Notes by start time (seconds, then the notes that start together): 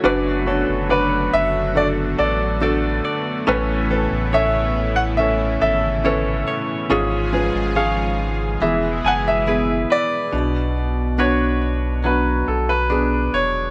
Already playing: F#3 A3 C#4 F#4
0.04 F#1 F#2 D3 B3 D4 F#4 B4 D5
0.46 D4 F#4 A4 C#5
0.69 F#1
0.89 D4 F#4 B4 D5
1.33 F#1 E5
1.75 D4 F#4 A4 D5
2.19 A1 A4 D5
2.61 A3 D4 F#4 A4 D5
3.05 D5
3.47 A1 A2 C#3 E3 A3 C#4 E4 A4 B4 C#5
3.90 C#4 A4 B4
4.12 A1
4.33 C#4 A4 C#5 E5
4.96 F#5
5.17 C#4 A4 C#5 E5
5.62 G#1 A4 E5
6.04 C#4 E4 A4 B4 C#5
6.48 C#5
6.90 G#1 G#2 F3 G#3 C#4 F4 G#4 C#5
7.33 C#4 F4 G#4 B4
7.55 G#1
7.75 C#4 F4 G#4 C#5 F5
8.61 E1 B2 E3 G#3 B3 E4 G#4 E5
9.04 F#1 G#4 F#5 G#5
9.28 E5
9.47 B3 E4 G#4 B4
9.90 B4 D5
10.32 B1 B2 B3 D4 F#4
11.18 B3 D4 F#4 B4 C#5
12.04 F#3 B3 D4 F#4 B4
12.48 B1 A4
12.69 B4
12.90 B3 D4 G#4
13.34 E1 C#5